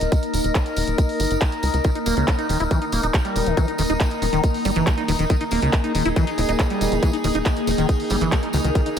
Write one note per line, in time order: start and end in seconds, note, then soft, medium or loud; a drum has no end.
0.00 0.08 D#1 medium
0.00 8.99 A#3 medium
0.00 8.99 D#4 medium
0.00 5.32 A#4 medium
0.00 8.99 A#4 medium
0.00 8.99 D#5 medium
0.00 8.99 D#6 medium
0.00 closed hi-hat medium
0.00 tambourine soft
0.12 kick loud
0.12 closed hi-hat loud
0.12 tambourine medium
0.23 closed hi-hat medium
0.23 tambourine soft
0.34 0.40 D#1 medium
0.34 open hi-hat loud
0.34 tambourine loud
0.44 0.51 D#1 medium
0.44 closed hi-hat medium
0.44 tambourine soft
0.55 kick loud
0.55 clap loud
0.55 closed hi-hat medium
0.55 tambourine medium
0.66 closed hi-hat medium
0.66 tambourine soft
0.76 0.83 D#1 medium
0.76 open hi-hat loud
0.76 tambourine medium
0.88 0.94 D#1 medium
0.88 closed hi-hat medium
0.88 tambourine soft
0.98 kick loud
0.98 closed hi-hat medium
0.98 tambourine medium
1.09 open hi-hat medium
1.09 tambourine soft
1.20 1.26 G1 loud
1.20 open hi-hat loud
1.20 tambourine medium
1.31 1.37 G1 medium
1.31 closed hi-hat medium
1.31 tambourine soft
1.41 kick loud
1.41 clap loud
1.41 closed hi-hat medium
1.41 tambourine medium
1.52 closed hi-hat soft
1.52 tambourine soft
1.63 1.70 C#2 medium
1.63 open hi-hat loud
1.63 tambourine medium
1.74 1.80 C#2 medium
1.74 closed hi-hat medium
1.74 tambourine soft
1.84 1.91 D#3 medium
1.84 kick loud
1.84 closed hi-hat medium
1.84 tambourine medium
1.95 1.99 D#4 medium
1.95 closed hi-hat medium
1.95 tambourine soft
2.06 2.13 D#1 medium
2.06 2.15 A#3 medium
2.06 open hi-hat loud
2.06 tambourine loud
2.17 2.23 C#2 medium
2.17 2.26 C#3 medium
2.17 closed hi-hat medium
2.17 tambourine soft
2.28 kick loud
2.28 clap loud
2.28 closed hi-hat medium
2.28 tambourine medium
2.39 2.47 D#4 medium
2.39 closed hi-hat medium
2.39 tambourine soft
2.49 2.56 D#1 medium
2.49 2.58 D#3 medium
2.49 open hi-hat loud
2.49 tambourine medium
2.59 2.67 D#1 medium
2.59 2.64 E4 loud
2.59 closed hi-hat soft
2.59 tambourine soft
2.71 2.80 E3 loud
2.71 kick loud
2.71 closed hi-hat medium
2.71 tambourine medium
2.82 2.85 D#4 medium
2.82 closed hi-hat soft
2.82 tambourine soft
2.92 2.99 D#1 medium
2.92 3.01 A#3 medium
2.92 open hi-hat loud
2.92 tambourine medium
3.03 3.10 D#1 medium
3.03 3.07 D#4 loud
3.03 closed hi-hat medium
3.03 tambourine soft
3.14 kick loud
3.14 clap loud
3.14 closed hi-hat medium
3.14 tambourine medium
3.25 3.48 G3 medium
3.25 closed hi-hat medium
3.25 tambourine soft
3.36 3.42 D#1 medium
3.36 open hi-hat loud
3.36 tambourine loud
3.46 3.53 D#1 medium
3.46 3.55 D#3 loud
3.46 closed hi-hat medium
3.46 tambourine soft
3.57 3.66 E3 medium
3.57 kick loud
3.57 closed hi-hat medium
3.57 tambourine medium
3.68 3.72 D#4 medium
3.68 closed hi-hat medium
3.68 tambourine soft
3.78 3.85 D#1 loud
3.78 3.82 D#3 loud
3.78 open hi-hat loud
3.78 tambourine loud
3.90 3.96 D#1 medium
3.90 3.93 D#4 loud
3.90 closed hi-hat soft
3.90 tambourine soft
4.00 kick loud
4.00 clap loud
4.00 closed hi-hat medium
4.00 tambourine medium
4.10 closed hi-hat medium
4.10 tambourine soft
4.22 4.29 D#1 medium
4.22 4.26 D#3 medium
4.22 open hi-hat loud
4.22 tambourine loud
4.33 4.39 D#1 medium
4.33 4.42 D#3 loud
4.33 closed hi-hat soft
4.33 tambourine soft
4.43 kick loud
4.43 closed hi-hat medium
4.43 tambourine medium
4.54 open hi-hat medium
4.54 tambourine soft
4.65 4.72 G1 loud
4.65 4.71 G3 loud
4.65 open hi-hat loud
4.65 tambourine medium
4.75 4.82 G1 medium
4.75 4.88 E3 loud
4.75 closed hi-hat soft
4.75 tambourine soft
4.87 4.90 D#3 medium
4.87 kick loud
4.87 clap loud
4.87 closed hi-hat medium
4.87 tambourine medium
4.98 5.03 D#4 medium
4.98 closed hi-hat soft
4.98 tambourine soft
5.08 5.15 D#1 medium
5.08 5.12 D#3 loud
5.08 open hi-hat loud
5.08 tambourine medium
5.19 5.26 D#1 medium
5.19 5.25 D#3 medium
5.19 closed hi-hat soft
5.19 tambourine soft
5.30 5.36 D#3 medium
5.30 8.99 G#4 medium
5.30 kick loud
5.30 closed hi-hat medium
5.30 tambourine medium
5.41 5.44 D#4 medium
5.41 closed hi-hat medium
5.41 tambourine soft
5.51 5.58 D#1 medium
5.51 5.60 A#3 medium
5.51 open hi-hat loud
5.51 tambourine medium
5.62 5.69 C#2 medium
5.62 5.71 C#3 medium
5.62 closed hi-hat soft
5.62 tambourine soft
5.73 kick loud
5.73 clap loud
5.73 closed hi-hat medium
5.73 tambourine medium
5.84 5.93 D#4 medium
5.84 closed hi-hat medium
5.84 tambourine soft
5.95 6.01 D#1 medium
5.95 6.03 D#3 medium
5.95 open hi-hat loud
5.95 tambourine medium
6.05 6.12 D#1 medium
6.05 6.09 E4 loud
6.05 closed hi-hat medium
6.05 tambourine soft
6.16 6.25 E3 loud
6.16 kick loud
6.16 closed hi-hat medium
6.16 tambourine medium
6.27 6.31 D#4 medium
6.27 closed hi-hat medium
6.27 tambourine soft
6.38 6.44 D#1 medium
6.38 6.41 C#3 medium
6.38 open hi-hat loud
6.38 tambourine medium
6.49 6.55 D#1 medium
6.49 6.52 D#4 loud
6.49 closed hi-hat soft
6.49 tambourine soft
6.59 kick loud
6.59 clap loud
6.59 closed hi-hat medium
6.59 tambourine medium
6.70 6.93 G3 medium
6.70 closed hi-hat soft
6.70 tambourine soft
6.81 6.88 D#1 medium
6.81 open hi-hat loud
6.81 tambourine loud
6.92 6.98 D#1 medium
6.92 7.01 D#3 loud
6.92 closed hi-hat medium
6.92 tambourine soft
7.03 7.11 E3 loud
7.03 kick loud
7.03 closed hi-hat loud
7.03 tambourine medium
7.13 7.17 D#4 medium
7.13 closed hi-hat medium
7.13 tambourine soft
7.24 7.31 D#1 medium
7.24 7.28 D#3 loud
7.24 open hi-hat loud
7.24 tambourine medium
7.35 7.41 D#1 medium
7.35 7.39 D#4 loud
7.35 closed hi-hat medium
7.35 tambourine soft
7.45 kick loud
7.45 clap loud
7.45 closed hi-hat medium
7.45 tambourine medium
7.57 closed hi-hat medium
7.57 tambourine soft
7.67 7.74 D#1 medium
7.67 7.71 D#3 medium
7.67 open hi-hat loud
7.67 tambourine medium
7.78 7.85 D#1 medium
7.78 7.87 D#3 loud
7.78 closed hi-hat medium
7.78 tambourine soft
7.89 kick loud
7.89 closed hi-hat medium
7.89 tambourine soft
8.00 open hi-hat medium
8.00 tambourine soft
8.10 8.17 G1 medium
8.10 8.16 G3 loud
8.10 open hi-hat loud
8.10 tambourine medium
8.21 8.28 G1 medium
8.21 8.34 E3 loud
8.21 closed hi-hat medium
8.21 tambourine soft
8.32 8.36 D#3 medium
8.32 kick loud
8.32 clap loud
8.32 closed hi-hat medium
8.32 tambourine medium
8.43 8.49 D#4 medium
8.43 closed hi-hat medium
8.43 tambourine soft
8.53 8.60 C#2 loud
8.53 8.57 D#3 loud
8.53 open hi-hat loud
8.53 tambourine loud
8.64 8.71 C#2 medium
8.64 8.70 D#3 medium
8.64 closed hi-hat medium
8.64 tambourine soft
8.75 8.81 D#3 medium
8.75 kick loud
8.75 closed hi-hat loud
8.75 tambourine soft
8.86 8.90 D#4 medium
8.86 closed hi-hat medium
8.86 tambourine soft